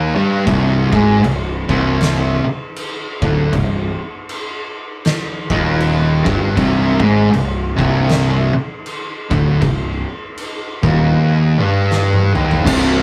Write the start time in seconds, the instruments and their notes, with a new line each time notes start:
Already playing: distorted electric guitar D#2 D#3
0.15 distorted electric guitar G2 G3
0.47 fingered electric bass C1, distorted electric guitar C2 C3, kick, crash
0.92 fingered electric bass G#1, distorted electric guitar G#2 G#3, kick
1.23 fingered electric bass C1, distorted electric guitar C2, crash
1.68 fingered electric bass C1, distorted electric guitar C2 C3, kick
2.01 snare, crash
2.44 muted fingered electric bass stroke, muted distorted electric guitar stroke
2.76 crash
3.22 fingered electric bass D1, distorted electric guitar D2 D3, kick
3.53 fingered electric bass C1, distorted electric guitar C2, kick, crash
4.29 crash
5.05 snare, crash
5.50 fingered electric bass D#1, distorted electric guitar D#2 D#3, kick
5.80 crash
6.25 fingered electric bass G1, distorted electric guitar G2 G3, kick
6.57 fingered electric bass C1, distorted electric guitar C2 C3, kick, crash
7.01 fingered electric bass G#1, distorted electric guitar G#2 G#3
7.32 fingered electric bass C1, distorted electric guitar C2, crash
7.76 fingered electric bass C1, distorted electric guitar C2 C3, kick
8.09 snare, crash
8.54 muted distorted electric guitar stroke, muted fingered electric bass stroke
8.86 crash
9.30 fingered electric bass D1, distorted electric guitar D2 D3, kick
9.61 fingered electric bass C1, distorted electric guitar C2, kick, crash
10.37 crash
10.83 fingered electric bass D#1, distorted electric guitar D#2 D#3, kick
11.59 distorted electric guitar G2 G3
11.91 snare
12.13 high tom
12.34 distorted electric guitar D#2 D#3, mid tom
12.51 floor tom
12.65 fingered electric bass C1, distorted electric guitar C2 C3, kick, crash